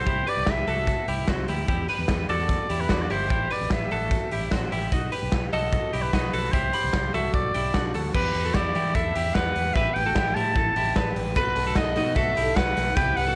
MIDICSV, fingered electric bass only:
0, 0, Header, 1, 2, 480
1, 0, Start_track
1, 0, Key_signature, 1, "minor"
1, 0, Tempo, 402955
1, 82, Time_signature, 4, 2, 24, 8
1, 15906, End_track
2, 0, Start_track
2, 0, Title_t, "Fingered electric bass"
2, 0, Program_c, 0, 33
2, 80, Note_on_c, 0, 36, 106
2, 278, Note_off_c, 0, 36, 0
2, 441, Note_on_c, 0, 36, 81
2, 540, Note_off_c, 0, 36, 0
2, 559, Note_on_c, 0, 36, 78
2, 758, Note_off_c, 0, 36, 0
2, 803, Note_on_c, 0, 36, 93
2, 1099, Note_off_c, 0, 36, 0
2, 1285, Note_on_c, 0, 36, 79
2, 1482, Note_off_c, 0, 36, 0
2, 1529, Note_on_c, 0, 36, 76
2, 1725, Note_off_c, 0, 36, 0
2, 1772, Note_on_c, 0, 38, 85
2, 1967, Note_off_c, 0, 38, 0
2, 2011, Note_on_c, 0, 40, 100
2, 2207, Note_off_c, 0, 40, 0
2, 2370, Note_on_c, 0, 40, 80
2, 2468, Note_off_c, 0, 40, 0
2, 2489, Note_on_c, 0, 40, 85
2, 2686, Note_off_c, 0, 40, 0
2, 2730, Note_on_c, 0, 40, 86
2, 3026, Note_off_c, 0, 40, 0
2, 3215, Note_on_c, 0, 40, 85
2, 3411, Note_off_c, 0, 40, 0
2, 3457, Note_on_c, 0, 40, 76
2, 3652, Note_off_c, 0, 40, 0
2, 3697, Note_on_c, 0, 31, 77
2, 3892, Note_off_c, 0, 31, 0
2, 3937, Note_on_c, 0, 33, 94
2, 4133, Note_off_c, 0, 33, 0
2, 4303, Note_on_c, 0, 33, 87
2, 4398, Note_off_c, 0, 33, 0
2, 4418, Note_on_c, 0, 33, 90
2, 4614, Note_off_c, 0, 33, 0
2, 4665, Note_on_c, 0, 33, 97
2, 4957, Note_off_c, 0, 33, 0
2, 5147, Note_on_c, 0, 33, 84
2, 5341, Note_off_c, 0, 33, 0
2, 5383, Note_on_c, 0, 33, 76
2, 5578, Note_off_c, 0, 33, 0
2, 5628, Note_on_c, 0, 33, 86
2, 5822, Note_off_c, 0, 33, 0
2, 5863, Note_on_c, 0, 35, 95
2, 6059, Note_off_c, 0, 35, 0
2, 6226, Note_on_c, 0, 35, 78
2, 6322, Note_off_c, 0, 35, 0
2, 6344, Note_on_c, 0, 35, 77
2, 6540, Note_off_c, 0, 35, 0
2, 6586, Note_on_c, 0, 35, 85
2, 6880, Note_off_c, 0, 35, 0
2, 7072, Note_on_c, 0, 35, 88
2, 7265, Note_off_c, 0, 35, 0
2, 7310, Note_on_c, 0, 35, 70
2, 7504, Note_off_c, 0, 35, 0
2, 7546, Note_on_c, 0, 35, 78
2, 7742, Note_off_c, 0, 35, 0
2, 7786, Note_on_c, 0, 36, 104
2, 7982, Note_off_c, 0, 36, 0
2, 8147, Note_on_c, 0, 36, 87
2, 8244, Note_off_c, 0, 36, 0
2, 8260, Note_on_c, 0, 36, 83
2, 8459, Note_off_c, 0, 36, 0
2, 8509, Note_on_c, 0, 36, 85
2, 8704, Note_off_c, 0, 36, 0
2, 8740, Note_on_c, 0, 35, 84
2, 8939, Note_off_c, 0, 35, 0
2, 8991, Note_on_c, 0, 35, 88
2, 9185, Note_off_c, 0, 35, 0
2, 9228, Note_on_c, 0, 35, 83
2, 9423, Note_off_c, 0, 35, 0
2, 9463, Note_on_c, 0, 38, 78
2, 9661, Note_off_c, 0, 38, 0
2, 9704, Note_on_c, 0, 40, 94
2, 9901, Note_off_c, 0, 40, 0
2, 9946, Note_on_c, 0, 40, 86
2, 10142, Note_off_c, 0, 40, 0
2, 10183, Note_on_c, 0, 40, 81
2, 10380, Note_off_c, 0, 40, 0
2, 10429, Note_on_c, 0, 52, 91
2, 10624, Note_off_c, 0, 52, 0
2, 10659, Note_on_c, 0, 40, 97
2, 10858, Note_off_c, 0, 40, 0
2, 10907, Note_on_c, 0, 40, 72
2, 11102, Note_off_c, 0, 40, 0
2, 11143, Note_on_c, 0, 40, 77
2, 11340, Note_off_c, 0, 40, 0
2, 11388, Note_on_c, 0, 40, 85
2, 11583, Note_off_c, 0, 40, 0
2, 11621, Note_on_c, 0, 33, 106
2, 11818, Note_off_c, 0, 33, 0
2, 11865, Note_on_c, 0, 33, 98
2, 12060, Note_off_c, 0, 33, 0
2, 12104, Note_on_c, 0, 33, 86
2, 12299, Note_off_c, 0, 33, 0
2, 12340, Note_on_c, 0, 45, 90
2, 12537, Note_off_c, 0, 45, 0
2, 12577, Note_on_c, 0, 33, 89
2, 12775, Note_off_c, 0, 33, 0
2, 12820, Note_on_c, 0, 33, 76
2, 13016, Note_off_c, 0, 33, 0
2, 13061, Note_on_c, 0, 33, 82
2, 13256, Note_off_c, 0, 33, 0
2, 13295, Note_on_c, 0, 33, 95
2, 13493, Note_off_c, 0, 33, 0
2, 13532, Note_on_c, 0, 35, 98
2, 13730, Note_off_c, 0, 35, 0
2, 13772, Note_on_c, 0, 35, 97
2, 13970, Note_off_c, 0, 35, 0
2, 14010, Note_on_c, 0, 35, 80
2, 14252, Note_on_c, 0, 47, 101
2, 14269, Note_off_c, 0, 35, 0
2, 14449, Note_off_c, 0, 47, 0
2, 14488, Note_on_c, 0, 35, 96
2, 14686, Note_off_c, 0, 35, 0
2, 14737, Note_on_c, 0, 35, 88
2, 14931, Note_off_c, 0, 35, 0
2, 14972, Note_on_c, 0, 35, 82
2, 15168, Note_off_c, 0, 35, 0
2, 15214, Note_on_c, 0, 35, 96
2, 15408, Note_off_c, 0, 35, 0
2, 15447, Note_on_c, 0, 36, 103
2, 15643, Note_off_c, 0, 36, 0
2, 15679, Note_on_c, 0, 36, 93
2, 15878, Note_off_c, 0, 36, 0
2, 15906, End_track
0, 0, End_of_file